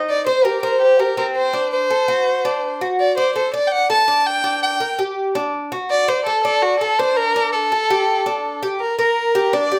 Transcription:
Already playing: D#4
0.09 D5
0.27 C5
0.45 G4 A#4
0.63 A#4 C5
0.82 G4
0.99 G4 A#4
1.17 C4 A#4
1.36 C5
1.53 D4
1.73 C5
1.90 A4
2.08 F#4
2.45 D4
2.81 F#4
3.00 D5
3.17 C5 D5
3.36 A4 C5
3.54 D5
3.67 G5
3.72 F#5
3.90 A4 A5
4.08 D4
4.26 G5
4.44 D4
4.62 G5
4.80 A#4
4.99 G4
5.35 D4
5.72 F#4
5.91 D5
6.08 C5 D5
6.26 A4
6.44 A4 D5
6.62 F#4
6.80 A4
6.99 D4 C5
7.17 A#4
7.36 D4
7.53 A4
7.72 A4
7.90 G4
8.26 D4
8.63 G4
8.80 A#4
8.99 A#4
9.35 G4
9.53 D4 D5
9.72 G4

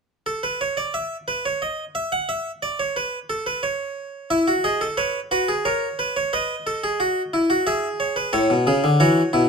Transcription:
0.26 A4
0.43 B4
0.61 C#5
0.77 D5
0.94 E5
1.28 B4
1.46 C#5
1.62 D#5
1.95 E5
2.12 F#5
2.29 E5
2.62 D5
2.79 C#5
2.96 B4
3.30 A4
3.46 B4
3.63 C#5
4.30 E4 E5
4.48 F#4
4.64 G#4 D#5
4.81 A4
4.97 B4 C#5
5.31 F#4 B4
5.48 G#4
5.65 A#4 C#5
5.99 B4
6.17 C#5
6.33 B4 D#5
6.67 A4
6.84 G#4
7.00 F#4
7.34 E4
7.50 F#4
7.67 G#4 E5
8.00 C#5
8.16 B4
8.33 A2 A4 C#5
8.50 B2
8.67 C#3 G#4
8.84 D3
9.00 E3 F#4 C#5
9.33 B2 E4

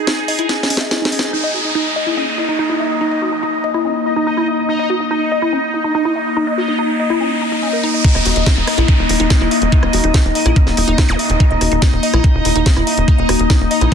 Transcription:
Already playing: D#4 G#4 G#5
0.07 D#4, snare, closed hi-hat
0.28 D#5, open hi-hat
0.39 E4, closed hi-hat
0.49 C#4, snare, closed hi-hat
0.63 snare
0.70 C#4, open hi-hat
0.77 E5, snare, closed hi-hat
0.91 E4, snare, closed hi-hat
1.02 D#4, snare
1.12 C#4, open hi-hat
1.19 snare, closed hi-hat
1.33 A#3 D#4 D#5, downlifter
1.37 D#4
1.42 D#5
1.54 F#4
1.65 D#4
1.75 D#4
1.86 A#5
1.96 D#5
2.07 E4
2.17 C#4
2.38 E4
2.49 D#4
2.59 D#4
2.69 E4
2.80 E5
3.01 D#4
3.11 D#5
3.22 F#4
3.32 D#4
3.43 D#4
3.64 D#5
3.74 E4
3.85 C#4
4.06 E4
4.16 D#4
4.27 D#4
4.37 E4
4.48 E5
4.69 D#4, riser
4.79 D#5
4.90 F#4
5.00 D#4
5.11 D#4
5.32 D#5
5.42 E4
5.53 C#4
5.74 E4
5.84 D#4
5.95 D#4
6.05 E4
6.16 E5
6.37 D#4
6.47 D#5
6.58 F#4
6.68 D#4
6.79 D#4
7.00 D#5
7.10 E4
7.21 C#4
7.42 D#4
7.52 D#4
7.63 C#4
7.73 A#4
7.84 D#4
7.94 D#5
8.04 D#4 D#5, kick, closed hi-hat, crash, downlifter
8.15 D#1 D#5, cross-stick
8.25 D#1 F#4, open hi-hat
8.36 D#1 D#4, closed hi-hat
8.46 D#4, kick, snare, closed hi-hat
8.57 D#1
8.67 D#5, cross-stick, open hi-hat
8.78 A#1 E4, closed hi-hat
8.88 C#4, kick, closed hi-hat
8.99 D#1
9.09 D#1 E4, open hi-hat
9.20 D#1 D#4, closed hi-hat
9.30 D#4, kick, cross-stick, snare, closed hi-hat
9.41 D#1 E4
9.51 E5, open hi-hat
9.62 D#1, closed hi-hat
9.72 D#4, kick, closed hi-hat
9.83 D#1 D#5, cross-stick
9.93 D#1 F#4, open hi-hat
10.04 D#1 D#4, closed hi-hat
10.14 D#4, kick, snare, closed hi-hat
10.25 D#1
10.35 D#5, open hi-hat
10.46 A#1 E4, cross-stick, closed hi-hat
10.56 C#4, kick, closed hi-hat
10.67 D#1, snare
10.77 D#1 E4, open hi-hat
10.88 D#1 D#4, closed hi-hat
10.98 D#4, kick, cross-stick, snare, closed hi-hat
11.09 D#1 E4, zap
11.19 E5, open hi-hat
11.30 D#1, closed hi-hat
11.40 D#4, kick, closed hi-hat
11.51 D#1 D#5
11.61 D#1 F#4, cross-stick, open hi-hat
11.72 D#1 D#4, closed hi-hat
11.82 D#4, kick, snare, closed hi-hat
11.93 D#1
12.03 D#5, open hi-hat
12.14 A#1 E4, cross-stick, closed hi-hat
12.24 C#4, kick, closed hi-hat
12.35 D#1
12.45 D#1 E4, open hi-hat
12.56 D#1 D#4, closed hi-hat
12.66 D#4, kick, snare, closed hi-hat
12.77 D#1 E4, cross-stick
12.87 E5, open hi-hat
12.97 D#1, closed hi-hat
13.08 D#4, kick, closed hi-hat
13.18 D#1 D#5
13.29 D#1 F#4, cross-stick, open hi-hat
13.39 D#1 D#4, closed hi-hat
13.50 D#4, kick, snare, closed hi-hat
13.60 D#1
13.71 D#5, open hi-hat
13.81 A#1 E4, closed hi-hat

